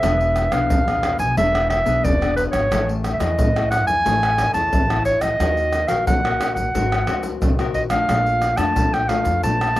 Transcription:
Already playing: clarinet E5
0.03 upright bass E1, nylon-string guitar E3 B3 D4 G#4, pandeiro, tamborim, shaker, surdo
0.21 pandeiro, shaker
0.36 pandeiro, tamborim, shaker
0.52 upright bass B1, nylon-string guitar B3 D4 G#4, clarinet F5, pandeiro, tamborim, shaker
0.70 upright bass E2, nylon-string guitar B2, pandeiro, shaker, surdo
0.88 nylon-string guitar B3 D4 G#4, pandeiro, tamborim, shaker
1.03 pandeiro, tamborim, surdo
1.19 upright bass B1, clarinet G#5, pandeiro, shaker, surdo
1.37 upright bass E1, nylon-string guitar E3 B3 D4 G#4, clarinet E5, pandeiro, shaker, surdo
1.55 pandeiro, tamborim, shaker
1.70 clarinet E5, pandeiro, tamborim, surdo
1.85 upright bass B1, nylon-string guitar B3 D4 G#4, pandeiro, shaker, surdo
2.04 upright bass E1, nylon-string guitar B2, clarinet D5, pandeiro, shaker, surdo
2.21 nylon-string guitar B3 D4 G#4, pandeiro, tamborim, shaker
2.36 clarinet B4, pandeiro, shaker
2.51 upright bass G#1, clarinet C#5, pandeiro, tamborim, shaker, surdo
2.71 upright bass A1, nylon-string guitar A3 C#4 E4 G#4, pandeiro, tamborim, shaker, surdo
2.89 pandeiro, shaker
3.04 pandeiro, tamborim, shaker
3.13 clarinet E5
3.20 upright bass E2, nylon-string guitar C#4 E4 G#4, clarinet D#5, pandeiro, tamborim, shaker
3.38 upright bass A2, nylon-string guitar E3, pandeiro, shaker, surdo
3.56 nylon-string guitar C#4 E4 G#4, pandeiro, tamborim, shaker
3.71 clarinet F#5, pandeiro, tamborim, shaker, surdo
3.87 upright bass E2, clarinet G#5, pandeiro, shaker, surdo
4.05 upright bass A1, nylon-string guitar A3 C#4 E4 G#4, pandeiro, shaker, surdo
4.23 pandeiro, tamborim, shaker
4.38 pandeiro, tamborim, shaker, surdo
4.54 upright bass E2, nylon-string guitar C#4 E4 G#4, clarinet A5, pandeiro, shaker, surdo
4.72 upright bass A1, nylon-string guitar E3, pandeiro, shaker, surdo
4.90 nylon-string guitar C#4 E4 G#4, pandeiro, tamborim, shaker
5.05 clarinet C#5, pandeiro, shaker
5.21 upright bass A1, clarinet D#5, pandeiro, tamborim, shaker, surdo
5.40 upright bass D#2, nylon-string guitar D#3 C#4 F#4 A#4, pandeiro, tamborim, shaker, surdo
5.57 pandeiro, shaker
5.73 pandeiro, tamborim, shaker
5.88 upright bass A#1, nylon-string guitar C#4 F#4 A#4, clarinet F5, pandeiro, tamborim, shaker
6.07 nylon-string guitar A#2, upright bass D#3, clarinet F#5, pandeiro, shaker, surdo
6.24 nylon-string guitar C#4 F#4 A#4, pandeiro, tamborim, shaker
6.41 pandeiro, tamborim, shaker, surdo
6.55 upright bass A#1, clarinet F#5, pandeiro, shaker, surdo
6.74 upright bass G#1, nylon-string guitar G#3 C4 F#4 A#4, pandeiro, shaker, surdo
6.92 pandeiro, tamborim, shaker
7.07 upright bass D2, nylon-string guitar C4 F#4 A#4, pandeiro, tamborim
7.23 pandeiro, shaker, surdo
7.42 upright bass C2, nylon-string guitar D#3, pandeiro, shaker, surdo
7.59 nylon-string guitar C4 F#4 A#4, pandeiro, tamborim, shaker
7.74 upright bass A#1, clarinet D#5, pandeiro
7.90 nylon-string guitar A3 D4 F4, clarinet F5, pandeiro, tamborim, shaker, surdo
8.09 upright bass A#1, nylon-string guitar A#2, pandeiro, tamborim, shaker, surdo
8.26 pandeiro, shaker
8.42 pandeiro, tamborim, shaker
8.57 upright bass F2, nylon-string guitar A3 D4 F4, clarinet A5, pandeiro, tamborim, shaker
8.76 upright bass A#2, nylon-string guitar F3, pandeiro, shaker, surdo
8.93 clarinet G5, pandeiro, tamborim, shaker
9.09 nylon-string guitar A3 D4 F4, clarinet F5, pandeiro, tamborim, surdo
9.25 upright bass F2, pandeiro, shaker, surdo
9.43 upright bass A#1, nylon-string guitar A#2, clarinet A5, pandeiro, shaker, surdo
9.61 pandeiro, tamborim, shaker
9.76 nylon-string guitar A3 D4, pandeiro, tamborim, shaker

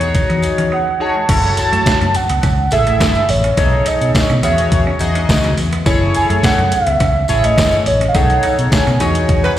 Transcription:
Already playing: fingered electric bass E2, analog polysynth D#4 F#4 G#4 C#5
0.01 closed hi-hat
0.15 kick, closed hi-hat, tambourine
0.30 fingered electric bass E3, clean electric guitar B3, closed hi-hat
0.42 muted clean electric guitar stroke, closed hi-hat, tambourine
0.58 fingered electric bass E3, clean electric guitar C#4, closed hi-hat
0.72 clean electric guitar B3, soft synth lead F#5
0.87 muted clean electric guitar stroke
1.00 analog polysynth D#4 F#4 G#4 C#5, soft synth lead A5
1.16 clean electric guitar G#3
1.29 fingered electric bass F#1, clean electric guitar C#4, analog polysynth E4 F#4 A4 C#5, kick, closed hi-hat, crash, tambourine
1.57 soft synth lead A5, muted clean electric guitar stroke, closed hi-hat, tambourine
1.72 fingered electric bass F#2, clean electric guitar A3, closed hi-hat
1.86 kick, snare, closed hi-hat, tambourine
2.01 fingered electric bass F#2, clean electric guitar C#4, closed hi-hat
2.14 soft synth lead F#5, muted clean electric guitar stroke, closed hi-hat, tambourine
2.29 fingered electric bass C#2, clean electric guitar B3, closed hi-hat
2.43 fingered electric bass C#2, clean electric guitar C#4, kick, closed hi-hat, tambourine
2.71 fingered electric bass A1, analog polysynth E4 G#4 A4 E5, soft synth lead E5, muted clean electric guitar stroke, closed hi-hat, tambourine
2.87 clean electric guitar A3, closed hi-hat
3.00 fingered electric bass F#1, clean electric guitar B3, kick, snare, closed hi-hat, tambourine
3.15 closed hi-hat
3.29 fingered electric bass A1, soft synth lead C#5, muted clean electric guitar stroke, open hi-hat
3.44 clean electric guitar C#4, closed hi-hat
3.57 fingered electric bass B1, clean electric guitar B3, analog polysynth D#4 G#4 A4 C#5, kick, closed hi-hat, tambourine
3.73 muted clean electric guitar stroke
3.86 clean electric guitar D#4, soft synth lead D#5, closed hi-hat, tambourine
4.01 fingered electric bass B2, closed hi-hat
4.15 muted clean electric guitar stroke, kick, snare, closed hi-hat, tambourine
4.30 fingered electric bass B2, clean electric guitar C#4, closed hi-hat
4.43 fingered electric bass E2, analog polysynth D#3 F#4 G#4 C#5, clean electric guitar B3, soft synth lead E5, closed hi-hat, tambourine
4.58 closed hi-hat
4.72 kick, closed hi-hat, tambourine
4.87 clean electric guitar C#4
4.99 fingered electric bass E2, analog polysynth D#4 F#4 G#4 D#5, muted clean electric guitar stroke, closed hi-hat, tambourine
5.15 clean electric guitar C#4, closed hi-hat
5.29 fingered electric bass C#2, kick, snare, closed hi-hat, tambourine
5.44 clean electric guitar B3, closed hi-hat
5.58 fingered electric bass E2, muted clean electric guitar stroke, open hi-hat, tambourine
5.73 clean electric guitar B3, closed hi-hat
5.86 fingered electric bass F#1, clean electric guitar C#4, analog polysynth E4 G#4 A4 C#5, kick, closed hi-hat, tambourine
6.15 soft synth lead G#5, muted clean electric guitar stroke, closed hi-hat, tambourine
6.30 fingered electric bass F#2, clean electric guitar A3, closed hi-hat
6.43 soft synth lead F#5, muted fingered electric bass stroke, kick, snare, closed hi-hat, tambourine
6.58 fingered electric bass F#2, clean electric guitar C#4, closed hi-hat
6.72 soft synth lead E5, muted clean electric guitar stroke, closed hi-hat, tambourine
6.87 fingered electric bass C#2, clean electric guitar B3, closed hi-hat
7.00 fingered electric bass C#2, clean electric guitar C#4, kick, closed hi-hat, tambourine
7.28 fingered electric bass A1, analog polysynth E4 G#4 A4 C#5, muted clean electric guitar stroke, closed hi-hat, tambourine
7.44 clean electric guitar A3, soft synth lead D#5, closed hi-hat
7.58 fingered electric bass F#1, clean electric guitar B3, kick, snare, closed hi-hat, tambourine
7.72 closed hi-hat
7.86 fingered electric bass A1, soft synth lead C#5, muted clean electric guitar stroke, open hi-hat, tambourine
8.01 clean electric guitar C#4, closed hi-hat
8.09 soft synth lead F5
8.14 fingered electric bass B1, clean electric guitar B3, analog polysynth D#4 G#4 A4 C#5, soft synth lead F#5, kick, closed hi-hat, tambourine
8.30 muted clean electric guitar stroke, closed hi-hat
8.43 clean electric guitar D#4, closed hi-hat, tambourine
8.58 fingered electric bass B2, closed hi-hat
8.72 soft synth lead G#5, muted clean electric guitar stroke, kick, snare, closed hi-hat, tambourine
8.87 fingered electric bass B2, clean electric guitar C#4, closed hi-hat
9.00 fingered electric bass E2, clean electric guitar B3, analog polysynth D#4 F#4 G#4 C#5, closed hi-hat, tambourine
9.15 closed hi-hat
9.29 kick, closed hi-hat
9.44 clean electric guitar C#4, horn section F#4 G#4 B4, closed hi-hat

